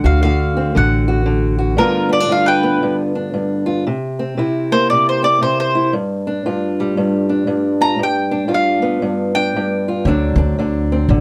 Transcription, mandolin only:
0.06 0.21 F5 medium
0.23 0.77 F5 medium
0.77 1.57 F#5 medium
1.78 2.12 A#4 medium
2.13 2.30 D5 medium
2.32 2.47 F5 medium
2.46 2.96 B4 medium
2.46 2.99 G5 medium
4.72 4.89 C5 loud
4.90 5.07 D5 medium
5.09 5.24 C5 medium
5.24 5.41 D5 medium
5.43 5.59 C5 medium
5.60 5.93 C5 medium
7.82 8.00 A#5 medium
8.03 8.52 G5 medium
8.54 9.34 F5 medium
9.35 10.04 G5 loud

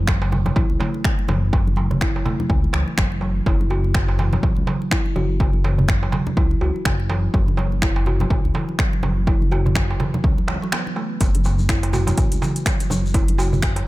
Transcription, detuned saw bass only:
0.00 0.51 F#1 loud
0.56 0.66 A1 loud
0.70 0.77 C#2 loud
1.29 2.20 F#1 medium
2.50 2.67 C#2 medium
2.74 2.83 C#2 medium
2.98 3.41 F#1 medium
3.46 4.38 F#1 loud
4.43 4.53 A1 loud
4.57 4.64 C#2 loud
5.16 6.07 F#1 medium
6.37 6.54 C#2 medium
6.61 6.71 C#2 medium
6.85 7.28 F#1 medium
7.34 8.25 F#1 loud
8.30 8.40 A1 loud
8.44 8.51 C#2 medium
9.03 9.94 F#1 medium
10.24 10.41 C#2 medium
10.48 10.58 C#2 medium
11.21 12.12 F#1 loud
12.18 12.27 A1 loud
12.32 12.38 C#2 loud
12.90 13.82 F#1 medium

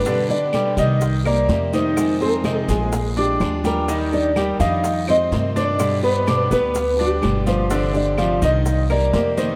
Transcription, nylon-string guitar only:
0.00 0.30 B4 medium
0.30 0.74 D5 medium
0.78 1.26 D#5 loud
1.26 1.74 D5 loud
1.74 2.18 C5 medium
2.22 2.66 A#4 medium
2.71 3.18 G#4 loud
3.19 3.66 G4 loud
3.66 4.14 A#4 loud
4.14 4.60 D5 medium
4.60 5.09 F5 loud
5.10 5.56 D#5 loud
5.57 6.03 D5 medium
6.03 6.36 C5 medium
6.36 6.48 B4 medium
6.52 7.01 B4 medium
7.01 7.49 G4 medium
7.48 7.95 C5 medium
7.96 8.40 D5 medium
8.44 8.91 D#5 loud
8.91 9.37 D5 loud
9.38 9.56 C5 medium

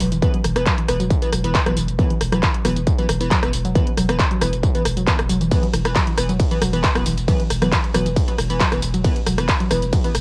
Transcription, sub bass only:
0.00 0.11 E1 loud
0.12 0.22 E1 medium
0.44 0.55 E1 loud
0.56 0.66 E1 medium
0.88 0.99 E1 loud
1.00 1.10 E1 medium
1.32 1.43 E1 loud
1.44 1.54 E1 medium
1.66 1.76 E1 medium
1.77 1.88 E1 loud
1.88 1.98 E1 medium
2.21 2.32 E1 loud
2.32 2.43 E1 medium
2.65 2.76 E1 loud
2.76 2.87 E1 medium
3.09 3.20 E1 loud
3.21 3.31 E1 medium
3.43 3.52 E1 medium
3.53 3.64 E1 loud
3.65 3.75 E1 medium
3.97 4.08 E1 loud
4.09 4.19 E1 medium
4.41 4.52 E1 loud
4.53 4.63 E1 medium
4.85 4.96 E1 loud
4.97 5.07 E1 medium
5.19 5.29 E1 medium
5.29 5.40 E1 loud
5.41 5.51 E1 medium
5.74 5.85 E1 loud
5.85 5.95 E1 medium
6.18 6.29 E1 loud
6.29 6.40 E1 medium
6.62 6.73 E1 loud
6.73 6.84 E1 medium
6.96 7.05 E1 medium
7.06 7.17 E1 loud
7.18 7.28 E1 medium
7.50 7.61 E1 loud
7.62 7.72 E1 medium
7.94 8.05 E1 loud
8.06 8.16 E1 medium
8.38 8.49 E1 loud
8.50 8.60 E1 medium
8.72 8.82 E1 medium
8.83 8.94 E1 loud
8.94 9.04 E1 medium
9.27 9.38 E1 loud
9.38 9.48 E1 medium
9.71 9.82 E1 loud
9.82 9.93 E1 medium
10.15 10.21 E1 loud

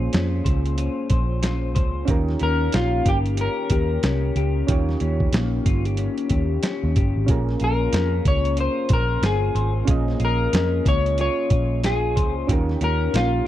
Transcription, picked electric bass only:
0.14 0.40 F2 medium
0.45 0.87 C#2 medium
1.10 1.76 A#1 medium
1.76 2.02 C#2 medium
2.08 2.34 D#2 medium
2.41 2.67 D#2 medium
2.74 3.00 A#1 medium
3.05 3.47 G1 medium
3.71 3.97 D#2 loud
4.03 4.30 C2 medium
4.36 4.62 C#2 medium
4.69 4.95 D#2 medium
5.01 5.27 D#2 medium
5.33 5.59 A#1 medium
5.65 6.07 G1 medium
6.31 6.57 D#2 medium
6.84 6.94 D#2 medium
6.96 7.12 G1 medium
7.16 7.26 G#1 medium
7.28 7.55 A#1 medium
7.61 7.87 A#1 medium
7.93 8.19 F2 medium
8.25 8.67 C#2 medium
8.90 9.17 A#1 medium
9.22 9.49 G1 medium
9.55 9.82 G#1 medium
9.88 10.14 A#1 medium
10.20 10.47 A#1 medium
10.53 10.80 F2 medium
10.86 11.28 C#2 medium
11.51 12.17 A#1 medium
12.17 12.43 C#2 medium
12.49 12.75 D#2 loud
12.81 13.07 D#2 medium
13.14 13.40 A#1 medium

